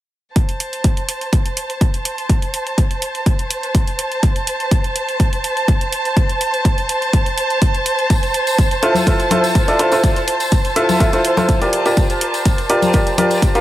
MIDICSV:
0, 0, Header, 1, 4, 480
1, 0, Start_track
1, 0, Tempo, 483871
1, 356, Time_signature, 4, 2, 24, 8
1, 13499, End_track
2, 0, Start_track
2, 0, Title_t, "Violin section"
2, 0, Program_c, 0, 48
2, 357, Note_on_c, 0, 72, 80
2, 357, Note_on_c, 0, 81, 81
2, 13499, Note_off_c, 0, 72, 0
2, 13499, Note_off_c, 0, 81, 0
2, 13499, End_track
3, 0, Start_track
3, 0, Title_t, "Grand piano"
3, 0, Program_c, 1, 0
3, 8756, Note_on_c, 1, 64, 87
3, 8756, Note_on_c, 1, 65, 78
3, 8756, Note_on_c, 1, 69, 79
3, 8756, Note_on_c, 1, 72, 93
3, 8969, Note_off_c, 1, 64, 0
3, 8969, Note_off_c, 1, 65, 0
3, 8969, Note_off_c, 1, 69, 0
3, 8969, Note_off_c, 1, 72, 0
3, 8995, Note_on_c, 1, 64, 69
3, 8995, Note_on_c, 1, 72, 77
3, 8996, Note_on_c, 1, 65, 64
3, 8996, Note_on_c, 1, 69, 62
3, 9160, Note_off_c, 1, 64, 0
3, 9160, Note_off_c, 1, 65, 0
3, 9160, Note_off_c, 1, 69, 0
3, 9160, Note_off_c, 1, 72, 0
3, 9236, Note_on_c, 1, 64, 79
3, 9236, Note_on_c, 1, 65, 72
3, 9236, Note_on_c, 1, 69, 71
3, 9236, Note_on_c, 1, 72, 89
3, 9573, Note_off_c, 1, 64, 0
3, 9573, Note_off_c, 1, 65, 0
3, 9573, Note_off_c, 1, 69, 0
3, 9573, Note_off_c, 1, 72, 0
3, 9602, Note_on_c, 1, 69, 75
3, 9603, Note_on_c, 1, 64, 78
3, 9603, Note_on_c, 1, 65, 72
3, 9603, Note_on_c, 1, 74, 88
3, 9699, Note_off_c, 1, 64, 0
3, 9699, Note_off_c, 1, 65, 0
3, 9699, Note_off_c, 1, 69, 0
3, 9699, Note_off_c, 1, 74, 0
3, 9715, Note_on_c, 1, 64, 91
3, 9715, Note_on_c, 1, 65, 85
3, 9715, Note_on_c, 1, 69, 87
3, 9715, Note_on_c, 1, 72, 102
3, 9812, Note_off_c, 1, 64, 0
3, 9812, Note_off_c, 1, 65, 0
3, 9812, Note_off_c, 1, 69, 0
3, 9812, Note_off_c, 1, 72, 0
3, 9842, Note_on_c, 1, 64, 87
3, 9842, Note_on_c, 1, 65, 81
3, 9842, Note_on_c, 1, 69, 81
3, 9842, Note_on_c, 1, 72, 98
3, 10096, Note_off_c, 1, 64, 0
3, 10096, Note_off_c, 1, 65, 0
3, 10096, Note_off_c, 1, 69, 0
3, 10096, Note_off_c, 1, 72, 0
3, 10675, Note_on_c, 1, 64, 93
3, 10675, Note_on_c, 1, 65, 83
3, 10675, Note_on_c, 1, 69, 85
3, 10675, Note_on_c, 1, 76, 97
3, 10882, Note_off_c, 1, 64, 0
3, 10882, Note_off_c, 1, 65, 0
3, 10882, Note_off_c, 1, 69, 0
3, 10882, Note_off_c, 1, 76, 0
3, 10914, Note_on_c, 1, 69, 75
3, 10914, Note_on_c, 1, 76, 89
3, 10915, Note_on_c, 1, 64, 78
3, 10915, Note_on_c, 1, 65, 71
3, 11024, Note_off_c, 1, 64, 0
3, 11024, Note_off_c, 1, 65, 0
3, 11024, Note_off_c, 1, 69, 0
3, 11024, Note_off_c, 1, 76, 0
3, 11042, Note_on_c, 1, 64, 72
3, 11042, Note_on_c, 1, 65, 66
3, 11043, Note_on_c, 1, 69, 65
3, 11043, Note_on_c, 1, 72, 75
3, 11197, Note_off_c, 1, 64, 0
3, 11197, Note_off_c, 1, 65, 0
3, 11197, Note_off_c, 1, 69, 0
3, 11197, Note_off_c, 1, 72, 0
3, 11282, Note_on_c, 1, 72, 100
3, 11283, Note_on_c, 1, 64, 89
3, 11283, Note_on_c, 1, 65, 81
3, 11283, Note_on_c, 1, 69, 84
3, 11485, Note_off_c, 1, 64, 0
3, 11485, Note_off_c, 1, 65, 0
3, 11485, Note_off_c, 1, 69, 0
3, 11485, Note_off_c, 1, 72, 0
3, 11522, Note_on_c, 1, 70, 64
3, 11522, Note_on_c, 1, 74, 76
3, 11523, Note_on_c, 1, 65, 69
3, 11523, Note_on_c, 1, 67, 61
3, 11732, Note_off_c, 1, 70, 0
3, 11732, Note_off_c, 1, 74, 0
3, 11733, Note_off_c, 1, 65, 0
3, 11733, Note_off_c, 1, 67, 0
3, 11762, Note_on_c, 1, 65, 70
3, 11762, Note_on_c, 1, 67, 63
3, 11762, Note_on_c, 1, 74, 75
3, 11763, Note_on_c, 1, 70, 67
3, 12568, Note_off_c, 1, 65, 0
3, 12569, Note_off_c, 1, 67, 0
3, 12569, Note_off_c, 1, 70, 0
3, 12569, Note_off_c, 1, 74, 0
3, 12595, Note_on_c, 1, 65, 88
3, 12595, Note_on_c, 1, 67, 82
3, 12595, Note_on_c, 1, 70, 81
3, 12595, Note_on_c, 1, 74, 100
3, 12809, Note_off_c, 1, 65, 0
3, 12809, Note_off_c, 1, 67, 0
3, 12809, Note_off_c, 1, 70, 0
3, 12809, Note_off_c, 1, 74, 0
3, 12835, Note_on_c, 1, 65, 72
3, 12835, Note_on_c, 1, 67, 66
3, 12835, Note_on_c, 1, 70, 65
3, 12835, Note_on_c, 1, 74, 80
3, 13000, Note_off_c, 1, 65, 0
3, 13000, Note_off_c, 1, 67, 0
3, 13000, Note_off_c, 1, 70, 0
3, 13000, Note_off_c, 1, 74, 0
3, 13075, Note_on_c, 1, 65, 82
3, 13075, Note_on_c, 1, 67, 74
3, 13075, Note_on_c, 1, 70, 75
3, 13075, Note_on_c, 1, 74, 90
3, 13412, Note_off_c, 1, 70, 0
3, 13413, Note_off_c, 1, 65, 0
3, 13413, Note_off_c, 1, 67, 0
3, 13413, Note_off_c, 1, 74, 0
3, 13443, Note_on_c, 1, 65, 80
3, 13443, Note_on_c, 1, 67, 74
3, 13443, Note_on_c, 1, 70, 77
3, 13443, Note_on_c, 1, 77, 88
3, 13499, Note_off_c, 1, 65, 0
3, 13499, Note_off_c, 1, 67, 0
3, 13499, Note_off_c, 1, 70, 0
3, 13499, Note_off_c, 1, 77, 0
3, 13499, End_track
4, 0, Start_track
4, 0, Title_t, "Drums"
4, 356, Note_on_c, 9, 36, 112
4, 356, Note_on_c, 9, 42, 61
4, 455, Note_off_c, 9, 42, 0
4, 456, Note_off_c, 9, 36, 0
4, 483, Note_on_c, 9, 42, 37
4, 583, Note_off_c, 9, 42, 0
4, 597, Note_on_c, 9, 42, 85
4, 696, Note_off_c, 9, 42, 0
4, 724, Note_on_c, 9, 42, 37
4, 823, Note_off_c, 9, 42, 0
4, 835, Note_on_c, 9, 42, 63
4, 836, Note_on_c, 9, 36, 110
4, 935, Note_off_c, 9, 36, 0
4, 935, Note_off_c, 9, 42, 0
4, 964, Note_on_c, 9, 42, 37
4, 1063, Note_off_c, 9, 42, 0
4, 1077, Note_on_c, 9, 42, 89
4, 1176, Note_off_c, 9, 42, 0
4, 1204, Note_on_c, 9, 42, 37
4, 1303, Note_off_c, 9, 42, 0
4, 1316, Note_on_c, 9, 36, 109
4, 1316, Note_on_c, 9, 42, 63
4, 1415, Note_off_c, 9, 36, 0
4, 1416, Note_off_c, 9, 42, 0
4, 1444, Note_on_c, 9, 42, 38
4, 1543, Note_off_c, 9, 42, 0
4, 1557, Note_on_c, 9, 42, 87
4, 1656, Note_off_c, 9, 42, 0
4, 1684, Note_on_c, 9, 42, 39
4, 1783, Note_off_c, 9, 42, 0
4, 1796, Note_on_c, 9, 36, 114
4, 1797, Note_on_c, 9, 42, 64
4, 1895, Note_off_c, 9, 36, 0
4, 1896, Note_off_c, 9, 42, 0
4, 1925, Note_on_c, 9, 42, 38
4, 2024, Note_off_c, 9, 42, 0
4, 2036, Note_on_c, 9, 42, 85
4, 2136, Note_off_c, 9, 42, 0
4, 2165, Note_on_c, 9, 42, 37
4, 2264, Note_off_c, 9, 42, 0
4, 2276, Note_on_c, 9, 36, 115
4, 2277, Note_on_c, 9, 42, 59
4, 2375, Note_off_c, 9, 36, 0
4, 2376, Note_off_c, 9, 42, 0
4, 2404, Note_on_c, 9, 42, 36
4, 2503, Note_off_c, 9, 42, 0
4, 2517, Note_on_c, 9, 42, 84
4, 2616, Note_off_c, 9, 42, 0
4, 2645, Note_on_c, 9, 42, 36
4, 2744, Note_off_c, 9, 42, 0
4, 2756, Note_on_c, 9, 36, 110
4, 2757, Note_on_c, 9, 42, 62
4, 2855, Note_off_c, 9, 36, 0
4, 2856, Note_off_c, 9, 42, 0
4, 2884, Note_on_c, 9, 42, 35
4, 2983, Note_off_c, 9, 42, 0
4, 2996, Note_on_c, 9, 42, 84
4, 3095, Note_off_c, 9, 42, 0
4, 3124, Note_on_c, 9, 42, 36
4, 3223, Note_off_c, 9, 42, 0
4, 3236, Note_on_c, 9, 36, 113
4, 3236, Note_on_c, 9, 42, 60
4, 3335, Note_off_c, 9, 36, 0
4, 3336, Note_off_c, 9, 42, 0
4, 3364, Note_on_c, 9, 42, 37
4, 3463, Note_off_c, 9, 42, 0
4, 3477, Note_on_c, 9, 42, 86
4, 3576, Note_off_c, 9, 42, 0
4, 3604, Note_on_c, 9, 42, 37
4, 3704, Note_off_c, 9, 42, 0
4, 3716, Note_on_c, 9, 36, 117
4, 3716, Note_on_c, 9, 42, 61
4, 3815, Note_off_c, 9, 36, 0
4, 3816, Note_off_c, 9, 42, 0
4, 3844, Note_on_c, 9, 42, 38
4, 3943, Note_off_c, 9, 42, 0
4, 3956, Note_on_c, 9, 42, 86
4, 4055, Note_off_c, 9, 42, 0
4, 4083, Note_on_c, 9, 42, 37
4, 4182, Note_off_c, 9, 42, 0
4, 4196, Note_on_c, 9, 36, 121
4, 4196, Note_on_c, 9, 42, 57
4, 4295, Note_off_c, 9, 36, 0
4, 4295, Note_off_c, 9, 42, 0
4, 4324, Note_on_c, 9, 42, 36
4, 4423, Note_off_c, 9, 42, 0
4, 4436, Note_on_c, 9, 42, 82
4, 4536, Note_off_c, 9, 42, 0
4, 4564, Note_on_c, 9, 42, 35
4, 4663, Note_off_c, 9, 42, 0
4, 4676, Note_on_c, 9, 36, 120
4, 4676, Note_on_c, 9, 42, 59
4, 4775, Note_off_c, 9, 36, 0
4, 4776, Note_off_c, 9, 42, 0
4, 4804, Note_on_c, 9, 42, 35
4, 4903, Note_off_c, 9, 42, 0
4, 4917, Note_on_c, 9, 42, 80
4, 5016, Note_off_c, 9, 42, 0
4, 5045, Note_on_c, 9, 42, 36
4, 5144, Note_off_c, 9, 42, 0
4, 5156, Note_on_c, 9, 36, 113
4, 5157, Note_on_c, 9, 42, 61
4, 5255, Note_off_c, 9, 36, 0
4, 5256, Note_off_c, 9, 42, 0
4, 5285, Note_on_c, 9, 42, 36
4, 5384, Note_off_c, 9, 42, 0
4, 5398, Note_on_c, 9, 42, 82
4, 5497, Note_off_c, 9, 42, 0
4, 5524, Note_on_c, 9, 42, 36
4, 5623, Note_off_c, 9, 42, 0
4, 5636, Note_on_c, 9, 36, 114
4, 5638, Note_on_c, 9, 42, 58
4, 5736, Note_off_c, 9, 36, 0
4, 5737, Note_off_c, 9, 42, 0
4, 5765, Note_on_c, 9, 42, 36
4, 5865, Note_off_c, 9, 42, 0
4, 5878, Note_on_c, 9, 42, 84
4, 5977, Note_off_c, 9, 42, 0
4, 6005, Note_on_c, 9, 42, 35
4, 6104, Note_off_c, 9, 42, 0
4, 6116, Note_on_c, 9, 36, 117
4, 6117, Note_on_c, 9, 42, 56
4, 6216, Note_off_c, 9, 36, 0
4, 6217, Note_off_c, 9, 42, 0
4, 6244, Note_on_c, 9, 42, 35
4, 6344, Note_off_c, 9, 42, 0
4, 6358, Note_on_c, 9, 42, 79
4, 6457, Note_off_c, 9, 42, 0
4, 6485, Note_on_c, 9, 42, 35
4, 6584, Note_off_c, 9, 42, 0
4, 6597, Note_on_c, 9, 36, 113
4, 6598, Note_on_c, 9, 42, 57
4, 6696, Note_off_c, 9, 36, 0
4, 6697, Note_off_c, 9, 42, 0
4, 6725, Note_on_c, 9, 42, 35
4, 6824, Note_off_c, 9, 42, 0
4, 6837, Note_on_c, 9, 42, 81
4, 6936, Note_off_c, 9, 42, 0
4, 6965, Note_on_c, 9, 42, 35
4, 7064, Note_off_c, 9, 42, 0
4, 7077, Note_on_c, 9, 36, 114
4, 7077, Note_on_c, 9, 42, 58
4, 7176, Note_off_c, 9, 36, 0
4, 7176, Note_off_c, 9, 42, 0
4, 7205, Note_on_c, 9, 42, 36
4, 7304, Note_off_c, 9, 42, 0
4, 7316, Note_on_c, 9, 42, 82
4, 7416, Note_off_c, 9, 42, 0
4, 7444, Note_on_c, 9, 42, 36
4, 7543, Note_off_c, 9, 42, 0
4, 7556, Note_on_c, 9, 36, 114
4, 7556, Note_on_c, 9, 42, 59
4, 7655, Note_off_c, 9, 42, 0
4, 7656, Note_off_c, 9, 36, 0
4, 7683, Note_on_c, 9, 42, 35
4, 7782, Note_off_c, 9, 42, 0
4, 7796, Note_on_c, 9, 42, 82
4, 7895, Note_off_c, 9, 42, 0
4, 7923, Note_on_c, 9, 42, 35
4, 8022, Note_off_c, 9, 42, 0
4, 8035, Note_on_c, 9, 54, 63
4, 8036, Note_on_c, 9, 36, 115
4, 8036, Note_on_c, 9, 42, 58
4, 8134, Note_off_c, 9, 54, 0
4, 8135, Note_off_c, 9, 36, 0
4, 8135, Note_off_c, 9, 42, 0
4, 8164, Note_on_c, 9, 42, 36
4, 8171, Note_on_c, 9, 54, 32
4, 8263, Note_off_c, 9, 42, 0
4, 8270, Note_off_c, 9, 54, 0
4, 8276, Note_on_c, 9, 42, 83
4, 8375, Note_off_c, 9, 42, 0
4, 8402, Note_on_c, 9, 54, 73
4, 8403, Note_on_c, 9, 42, 36
4, 8501, Note_off_c, 9, 54, 0
4, 8502, Note_off_c, 9, 42, 0
4, 8516, Note_on_c, 9, 36, 114
4, 8516, Note_on_c, 9, 42, 58
4, 8523, Note_on_c, 9, 54, 65
4, 8615, Note_off_c, 9, 36, 0
4, 8615, Note_off_c, 9, 42, 0
4, 8622, Note_off_c, 9, 54, 0
4, 8639, Note_on_c, 9, 54, 36
4, 8644, Note_on_c, 9, 42, 35
4, 8739, Note_off_c, 9, 54, 0
4, 8743, Note_off_c, 9, 42, 0
4, 8756, Note_on_c, 9, 42, 82
4, 8855, Note_off_c, 9, 42, 0
4, 8874, Note_on_c, 9, 63, 64
4, 8884, Note_on_c, 9, 42, 34
4, 8889, Note_on_c, 9, 54, 76
4, 8973, Note_off_c, 9, 63, 0
4, 8983, Note_off_c, 9, 42, 0
4, 8988, Note_off_c, 9, 54, 0
4, 8996, Note_on_c, 9, 36, 112
4, 8996, Note_on_c, 9, 42, 61
4, 9095, Note_off_c, 9, 36, 0
4, 9096, Note_off_c, 9, 42, 0
4, 9122, Note_on_c, 9, 54, 41
4, 9123, Note_on_c, 9, 42, 38
4, 9221, Note_off_c, 9, 54, 0
4, 9223, Note_off_c, 9, 42, 0
4, 9231, Note_on_c, 9, 63, 77
4, 9235, Note_on_c, 9, 42, 81
4, 9330, Note_off_c, 9, 63, 0
4, 9335, Note_off_c, 9, 42, 0
4, 9363, Note_on_c, 9, 42, 36
4, 9364, Note_on_c, 9, 54, 77
4, 9462, Note_off_c, 9, 42, 0
4, 9463, Note_off_c, 9, 54, 0
4, 9476, Note_on_c, 9, 36, 114
4, 9476, Note_on_c, 9, 42, 60
4, 9477, Note_on_c, 9, 54, 65
4, 9575, Note_off_c, 9, 36, 0
4, 9575, Note_off_c, 9, 42, 0
4, 9576, Note_off_c, 9, 54, 0
4, 9603, Note_on_c, 9, 42, 37
4, 9604, Note_on_c, 9, 54, 39
4, 9702, Note_off_c, 9, 42, 0
4, 9703, Note_off_c, 9, 54, 0
4, 9715, Note_on_c, 9, 42, 80
4, 9814, Note_off_c, 9, 42, 0
4, 9837, Note_on_c, 9, 54, 79
4, 9843, Note_on_c, 9, 42, 35
4, 9936, Note_off_c, 9, 54, 0
4, 9942, Note_off_c, 9, 42, 0
4, 9955, Note_on_c, 9, 36, 110
4, 9955, Note_on_c, 9, 42, 60
4, 9955, Note_on_c, 9, 54, 61
4, 10054, Note_off_c, 9, 54, 0
4, 10055, Note_off_c, 9, 36, 0
4, 10055, Note_off_c, 9, 42, 0
4, 10083, Note_on_c, 9, 42, 36
4, 10087, Note_on_c, 9, 54, 34
4, 10182, Note_off_c, 9, 42, 0
4, 10186, Note_off_c, 9, 54, 0
4, 10195, Note_on_c, 9, 42, 84
4, 10294, Note_off_c, 9, 42, 0
4, 10317, Note_on_c, 9, 54, 74
4, 10322, Note_on_c, 9, 42, 37
4, 10416, Note_off_c, 9, 54, 0
4, 10421, Note_off_c, 9, 42, 0
4, 10434, Note_on_c, 9, 42, 61
4, 10435, Note_on_c, 9, 36, 109
4, 10533, Note_off_c, 9, 42, 0
4, 10535, Note_off_c, 9, 36, 0
4, 10558, Note_on_c, 9, 54, 37
4, 10563, Note_on_c, 9, 42, 36
4, 10657, Note_off_c, 9, 54, 0
4, 10662, Note_off_c, 9, 42, 0
4, 10675, Note_on_c, 9, 42, 85
4, 10774, Note_off_c, 9, 42, 0
4, 10803, Note_on_c, 9, 42, 37
4, 10804, Note_on_c, 9, 54, 75
4, 10805, Note_on_c, 9, 63, 67
4, 10902, Note_off_c, 9, 42, 0
4, 10903, Note_off_c, 9, 54, 0
4, 10904, Note_off_c, 9, 63, 0
4, 10915, Note_on_c, 9, 36, 105
4, 10916, Note_on_c, 9, 42, 62
4, 11014, Note_off_c, 9, 36, 0
4, 11015, Note_off_c, 9, 42, 0
4, 11037, Note_on_c, 9, 54, 38
4, 11043, Note_on_c, 9, 42, 37
4, 11136, Note_off_c, 9, 54, 0
4, 11142, Note_off_c, 9, 42, 0
4, 11156, Note_on_c, 9, 42, 82
4, 11255, Note_off_c, 9, 42, 0
4, 11279, Note_on_c, 9, 63, 87
4, 11282, Note_on_c, 9, 54, 69
4, 11283, Note_on_c, 9, 42, 36
4, 11379, Note_off_c, 9, 63, 0
4, 11381, Note_off_c, 9, 54, 0
4, 11383, Note_off_c, 9, 42, 0
4, 11395, Note_on_c, 9, 36, 113
4, 11395, Note_on_c, 9, 42, 62
4, 11403, Note_on_c, 9, 54, 64
4, 11494, Note_off_c, 9, 36, 0
4, 11494, Note_off_c, 9, 42, 0
4, 11502, Note_off_c, 9, 54, 0
4, 11523, Note_on_c, 9, 42, 37
4, 11525, Note_on_c, 9, 54, 37
4, 11622, Note_off_c, 9, 42, 0
4, 11624, Note_off_c, 9, 54, 0
4, 11635, Note_on_c, 9, 42, 86
4, 11734, Note_off_c, 9, 42, 0
4, 11759, Note_on_c, 9, 54, 76
4, 11763, Note_on_c, 9, 42, 36
4, 11858, Note_off_c, 9, 54, 0
4, 11862, Note_off_c, 9, 42, 0
4, 11871, Note_on_c, 9, 54, 55
4, 11875, Note_on_c, 9, 36, 112
4, 11875, Note_on_c, 9, 42, 64
4, 11970, Note_off_c, 9, 54, 0
4, 11974, Note_off_c, 9, 36, 0
4, 11974, Note_off_c, 9, 42, 0
4, 12002, Note_on_c, 9, 42, 38
4, 12005, Note_on_c, 9, 54, 36
4, 12101, Note_off_c, 9, 42, 0
4, 12104, Note_off_c, 9, 54, 0
4, 12115, Note_on_c, 9, 42, 88
4, 12214, Note_off_c, 9, 42, 0
4, 12240, Note_on_c, 9, 54, 74
4, 12242, Note_on_c, 9, 42, 39
4, 12339, Note_off_c, 9, 54, 0
4, 12341, Note_off_c, 9, 42, 0
4, 12353, Note_on_c, 9, 54, 60
4, 12355, Note_on_c, 9, 36, 106
4, 12355, Note_on_c, 9, 42, 65
4, 12452, Note_off_c, 9, 54, 0
4, 12454, Note_off_c, 9, 36, 0
4, 12454, Note_off_c, 9, 42, 0
4, 12482, Note_on_c, 9, 42, 37
4, 12483, Note_on_c, 9, 54, 36
4, 12581, Note_off_c, 9, 42, 0
4, 12582, Note_off_c, 9, 54, 0
4, 12594, Note_on_c, 9, 42, 85
4, 12693, Note_off_c, 9, 42, 0
4, 12718, Note_on_c, 9, 63, 59
4, 12720, Note_on_c, 9, 54, 70
4, 12723, Note_on_c, 9, 42, 37
4, 12817, Note_off_c, 9, 63, 0
4, 12819, Note_off_c, 9, 54, 0
4, 12822, Note_off_c, 9, 42, 0
4, 12829, Note_on_c, 9, 54, 57
4, 12835, Note_on_c, 9, 36, 109
4, 12835, Note_on_c, 9, 42, 66
4, 12928, Note_off_c, 9, 54, 0
4, 12935, Note_off_c, 9, 36, 0
4, 12935, Note_off_c, 9, 42, 0
4, 12962, Note_on_c, 9, 54, 38
4, 12963, Note_on_c, 9, 42, 40
4, 13061, Note_off_c, 9, 54, 0
4, 13062, Note_off_c, 9, 42, 0
4, 13073, Note_on_c, 9, 63, 78
4, 13076, Note_on_c, 9, 42, 85
4, 13172, Note_off_c, 9, 63, 0
4, 13175, Note_off_c, 9, 42, 0
4, 13198, Note_on_c, 9, 54, 76
4, 13203, Note_on_c, 9, 42, 39
4, 13297, Note_off_c, 9, 54, 0
4, 13302, Note_off_c, 9, 42, 0
4, 13316, Note_on_c, 9, 36, 112
4, 13316, Note_on_c, 9, 42, 63
4, 13415, Note_off_c, 9, 36, 0
4, 13416, Note_off_c, 9, 42, 0
4, 13440, Note_on_c, 9, 54, 36
4, 13443, Note_on_c, 9, 42, 38
4, 13499, Note_off_c, 9, 42, 0
4, 13499, Note_off_c, 9, 54, 0
4, 13499, End_track
0, 0, End_of_file